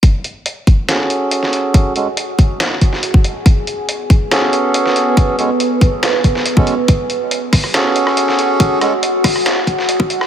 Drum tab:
HH |x-x-x-x-x-x-x-x-|x-x-x-x-x-x-x-x-|x-x-x-x-x-x-x-x-|x-x-x-x-x-x-x-x-|
SD |--------o----o--|--------o--o----|--------o----o--|--------o--o----|
BD |o-----o---------|o-----o---o--o--|o-----o---------|o-----o---o--o--|

HH |x-x-x-o-x-x-x-x-|x-x-x-o-x-x-x-x-|
SD |------rro--r-o--|--r---rro--o---r|
BD |o-----o---------|o-----o---o--o--|